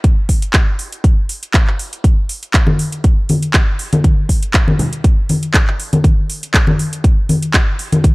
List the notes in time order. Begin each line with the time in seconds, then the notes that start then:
0.04 kick, closed hi-hat
0.29 kick, open hi-hat
0.42 closed hi-hat
0.53 kick, clap, closed hi-hat
0.79 open hi-hat
0.92 closed hi-hat
1.04 kick, closed hi-hat
1.29 open hi-hat
1.43 closed hi-hat
1.54 kick, clap, closed hi-hat
1.67 clap
1.79 open hi-hat
1.93 closed hi-hat
2.04 kick, closed hi-hat
2.29 open hi-hat
2.43 closed hi-hat
2.54 kick, clap, closed hi-hat
2.67 high conga
2.79 open hi-hat
2.92 closed hi-hat
3.04 kick, closed hi-hat
3.29 open hi-hat, high conga
3.42 closed hi-hat
3.54 kick, clap, closed hi-hat
3.79 open hi-hat
3.93 closed hi-hat, high conga
4.04 kick, closed hi-hat
4.29 kick, open hi-hat
4.43 closed hi-hat
4.54 kick, clap, closed hi-hat
4.68 high conga
4.79 open hi-hat, low conga
4.93 closed hi-hat
5.04 kick, closed hi-hat
5.29 open hi-hat, high conga
5.43 closed hi-hat
5.54 kick, clap, closed hi-hat
5.67 clap
5.80 open hi-hat
5.93 closed hi-hat, high conga
6.04 kick, closed hi-hat
6.30 open hi-hat
6.43 closed hi-hat
6.54 kick, clap, closed hi-hat
6.67 high conga
6.79 open hi-hat
6.93 closed hi-hat
7.04 kick, closed hi-hat
7.29 open hi-hat, high conga
7.42 closed hi-hat
7.54 kick, clap, closed hi-hat
7.79 open hi-hat
7.92 closed hi-hat, high conga
8.04 kick, closed hi-hat